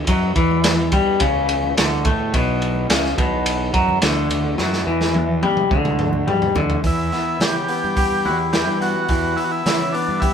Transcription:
Already playing: harmonium E2 B2
0.07 fingered electric bass F#2, clean electric guitar F#3, kick, ride
0.36 fingered electric bass E2, clean electric guitar E3, kick, ride
0.51 high conga
0.64 snare, ride
0.92 fingered electric bass G2, clean electric guitar G3, kick, ride, low conga
1.20 fingered electric bass C#2, clean electric guitar C#3, kick, ride
1.49 ride
1.64 high conga
1.77 fingered electric bass D2, clean electric guitar D3, snare, ride
2.05 fingered electric bass A2, clean electric guitar A3, kick, ride, low conga
2.34 fingered electric bass B1, clean electric guitar B2, kick, ride
2.62 ride
2.75 high conga
2.90 fingered electric bass C#2, clean electric guitar C#3, snare, ride
3.04 snare
3.18 fingered electric bass B1, clean electric guitar B2, kick, ride, low conga
3.46 ride
3.74 fingered electric bass F#2, clean electric guitar F#3, kick, ride
3.88 high conga, low conga
4.02 fingered electric bass D2, clean electric guitar D3, snare, ride
4.30 ride, low conga
4.58 fingered electric bass F#2, clean electric guitar F#3, snare
4.73 snare
4.87 fingered electric bass E2, clean electric guitar E3
5.00 snare, high conga
5.14 high tom
5.43 fingered electric bass G2, clean electric guitar G3, high tom, low conga
5.57 mid tom
5.71 fingered electric bass D2, clean electric guitar D3, kick, high conga
5.84 mid tom, high conga
5.99 mid tom
6.13 high conga, low conga
6.27 fingered electric bass G2, clean electric guitar G3, mid tom
6.42 floor tom
6.55 fingered electric bass D2, clean electric guitar D3, floor tom, low conga
6.70 floor tom
6.84 fingered electric bass E2, clean electric guitar E3, transistor combo organ E4, kick, open hi-hat
7.12 clean electric guitar B3, snare, open hi-hat
7.40 fingered electric bass C#3, clean electric guitar E3, transistor combo organ G4, snare, open hi-hat
7.68 clean electric guitar B3, transistor combo organ G4, open hi-hat
7.84 fingered electric bass G2
7.97 clean electric guitar G4, kick, open hi-hat
8.25 fingered electric bass E2, clean electric guitar E4, transistor combo organ F#4, open hi-hat
8.53 clean electric guitar E3, transistor combo organ G4, snare, open hi-hat
8.68 fingered electric bass G2
8.81 clean electric guitar B3, transistor combo organ F#4, open hi-hat
9.09 fingered electric bass E2, clean electric guitar E3, kick, open hi-hat
9.36 clean electric guitar B3, transistor combo organ E4, open hi-hat
9.44 transistor combo organ F#4
9.51 transistor combo organ E4
9.66 fingered electric bass C#3, clean electric guitar E3, snare, open hi-hat
9.92 clean electric guitar B3, transistor combo organ D4, open hi-hat
10.08 fingered electric bass G2
10.20 transistor combo organ E4, clean electric guitar G4, kick, open hi-hat

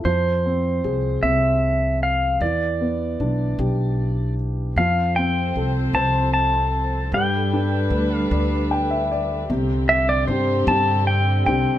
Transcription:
0.05 upright bass F2, upright piano F3, pedal steel guitar C5
0.46 upright piano C4
0.84 upright bass C2, upright piano G#4
1.23 upright bass C2, upright piano C4, pedal steel guitar E5
2.03 pedal steel guitar F5
2.41 upright bass E2, upright piano E3, pedal steel guitar D5
2.81 upright piano B3
3.20 upright bass B1, upright piano D4
3.59 upright bass B1, upright piano G4
4.74 upright bass F2, string section F3 C4 A4 C5, upright piano F3, pedal steel guitar F5
5.16 upright piano C4, pedal steel guitar G5
5.56 upright bass C2, upright piano A4
5.93 upright bass C2, upright piano C5, pedal steel guitar A5
6.34 pedal steel guitar A5
7.12 upright bass G2, upright piano G3, string section G3 D4 B4, pedal steel guitar G5
7.53 upright piano D4
7.90 upright bass D2, upright piano B4
8.16 pedal steel guitar F5
8.31 upright bass D2, upright piano D5
8.71 upright piano G5
8.91 upright piano E5
9.11 upright piano D5
9.50 upright bass C2, upright piano C3, string section D3 G3 C4 G4
9.89 pedal steel guitar E5
10.09 pedal steel guitar D5
10.27 upright bass G2, upright piano C4 D4 G4, pedal steel guitar C5
10.67 upright bass G2, upright piano C4 D4 G4, pedal steel guitar A5
11.07 pedal steel guitar G5
11.46 upright bass C2, upright piano C4 D4 G4, pedal steel guitar G5

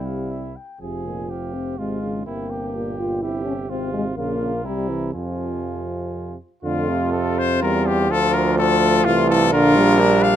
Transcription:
Already playing: bass trombone C2, euphonium C3, french horn G3, flugelhorn E4
0.05 trumpet F5
0.31 trumpet E5
0.56 trumpet G5
0.80 bass trombone F1, euphonium C3, french horn F3, flugelhorn G#4, trumpet G#5
1.05 euphonium A#2
1.30 euphonium C3, flugelhorn G4, trumpet F5
1.54 french horn C4
1.78 bass trombone G#1, euphonium C3, french horn G#3, flugelhorn F4, trumpet F5
2.02 euphonium C#3
2.26 bass trombone G1, euphonium C3, french horn A#3, flugelhorn E4, trumpet G5
2.50 flugelhorn G4
2.75 euphonium A#2, trumpet G5
2.98 euphonium A#2, french horn F4
3.22 euphonium C3, french horn E4, flugelhorn G4, trumpet E5
3.46 french horn C#4
3.70 bass trombone G#1, euphonium C3, french horn C4, flugelhorn F4, trumpet F5
3.93 french horn G#3
4.16 bass trombone A#1, euphonium C#3, french horn A#3, flugelhorn F4, trumpet F5
4.41 euphonium C#3
4.64 bass trombone C2, euphonium C3, french horn G3, flugelhorn E4, trumpet A#5
4.89 french horn E3
5.13 bass trombone F2, euphonium C3, french horn F3, flugelhorn F4, trumpet G#5
6.63 bass trombone F2, euphonium D3, french horn A3, flugelhorn F4, trumpet F4
6.89 euphonium C3
7.12 french horn C4, trumpet A4
7.38 trumpet C5
7.62 bass trombone E2, euphonium G3, trumpet A#4
7.86 trumpet G4
8.10 bass trombone D2, euphonium F3, french horn D4, flugelhorn F4, trumpet A4
8.34 trumpet A#4
8.58 french horn A3, flugelhorn F4, trumpet A4
9.04 bass trombone C2, euphonium E3, trumpet F4
9.30 trumpet A4
9.52 bass trombone A#1, euphonium D3, french horn D4, flugelhorn F4, trumpet A#4
9.76 euphonium G3
9.99 french horn A#3, flugelhorn D4
10.23 trumpet F5

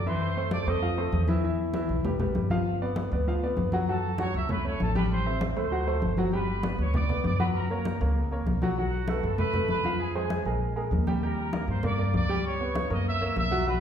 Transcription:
Already playing: upright bass F#2
0.06 grand piano E3 E4 E5, trumpet section C5 C6
0.21 high conga
0.36 grand piano A3 A4 C5, high conga
0.51 trumpet section D5 D6, high conga
0.67 upright bass F2, grand piano A3 A4 C5, trumpet section D#5 D#6, high conga
0.82 grand piano F3 F4 F5, high conga
0.97 grand piano A3 A4 C5, high conga
1.12 upright bass E2, high conga
1.28 grand piano E3 E4 E5, high conga
1.43 grand piano E3 E4 E5, high conga
1.59 high conga
1.74 grand piano E3 E4 E5, high conga
1.89 upright bass B1, high conga
2.05 grand piano G3 G4 B4, high conga, low conga
2.19 grand piano G3 G4 B4, high conga, low conga
2.35 upright bass G1, high conga
2.50 grand piano F3 F4 F5, high conga
2.66 high conga
2.81 grand piano B3 B4 D5, high conga
2.96 high conga
3.12 upright bass D2, grand piano B3 B4 D5, high conga
3.26 grand piano F3 F4 F5, high conga
3.42 grand piano B3 B4 D5, high conga
3.57 upright bass F#2, high conga
3.72 grand piano F#3 F#4 F#5, high conga
3.88 grand piano F#3 F#4 F#5, trumpet section A4 A5, high conga
4.03 high conga
4.18 grand piano F#3 F#4 F#5, trumpet section C#5 C#6, high conga
4.34 upright bass C#2, trumpet section E5 E6, high conga
4.49 grand piano A3 A4 C#5, trumpet section B4 B5, high conga, low conga
4.65 grand piano A3 A4 C#5, trumpet section C#5 C#6, high conga
4.80 upright bass A1, trumpet section A4 A5, high conga
4.95 grand piano G3 G4 G5, trumpet section B4 B5, high conga
5.11 trumpet section C5 C6, high conga
5.26 grand piano C4 C5 E5, high conga
5.41 high conga
5.56 upright bass D2, grand piano A3 A4 C5, trumpet section C5 C6, high conga
5.72 grand piano F#3 F#4 F#5, high conga
5.87 grand piano A3 A4 C5, high conga
6.02 upright bass G1, high conga
6.17 grand piano F#3 F#4 F#5, high conga
6.32 grand piano G3 G4 G5, trumpet section B4 B5, high conga
6.48 high conga
6.63 grand piano B3 B4 D5, high conga
6.78 upright bass D2, trumpet section C#5 C#6, high conga
6.94 grand piano B3 B4 D5, trumpet section D5 D6, high conga, low conga
7.09 grand piano B3 B4 D5, high conga, low conga
7.24 upright bass F#2, trumpet section D5 D6, high conga
7.40 grand piano F#3 F#4 F#5, trumpet section B4 B5, high conga
7.55 trumpet section A#4 A#5, high conga
7.70 grand piano A#3 A#4 C#5, trumpet section A#4 A#5, high conga
7.85 high conga
8.01 upright bass C#2, grand piano A#3 A#4 C#5, high conga
8.16 high conga
8.31 grand piano A#3 A#4 C#5, high conga
8.47 upright bass B1, high conga
8.62 grand piano F#3 F#4 F#5, high conga
8.77 grand piano F#3 F#4 F#5, trumpet section F#4 F#5, high conga
8.93 high conga
9.08 grand piano A3 A4 B4, high conga
9.23 upright bass F#2, trumpet section A4 A5, high conga
9.38 grand piano A3 A4 B4, trumpet section B4 B5, high conga, low conga
9.53 grand piano A3 A4 B4, high conga, low conga
9.68 upright bass F2, trumpet section B4 B5, high conga
9.84 grand piano F3 F4 F5, high conga
9.99 trumpet section G#4 G#5, high conga
10.15 grand piano G#3 G#4 C5, trumpet section G#4 G#5, high conga
10.30 high conga
10.45 upright bass A#1, grand piano G#3 G#4 A#4, high conga
10.61 high conga
10.76 grand piano G#3 G#4 A#4, high conga
10.91 upright bass D#2, high conga
11.07 grand piano G3 G4 G5, high conga
11.23 grand piano G3 G4 G5, trumpet section A#4 A#5, high conga
11.38 high conga
11.53 grand piano A#3 A#4 D5, high conga
11.68 upright bass G2, trumpet section C5 C6, high conga
11.83 grand piano A#3 A#4 D5, trumpet section D5 D6, high conga, low conga
11.99 grand piano A#3 A#4 D5, high conga
12.14 upright bass C#2, trumpet section D5 D6, high conga
12.29 grand piano G3 G4 G5
12.45 trumpet section C#5 C#6, high conga
12.60 grand piano B3 B4 C#5, high conga
12.75 high conga
12.90 upright bass F#2, grand piano A#3 A#4 C#5, trumpet section D#5 D#6, high conga
13.06 trumpet section E5 E6, high conga
13.21 upright bass C#2, grand piano A#3 A#4 C#5, high conga
13.36 upright bass B1, trumpet section E5 E6, high conga
13.51 grand piano F#3 F#4 F#5, high conga
13.67 grand piano F#3 F#4 F#5, trumpet section B4 B5, high conga

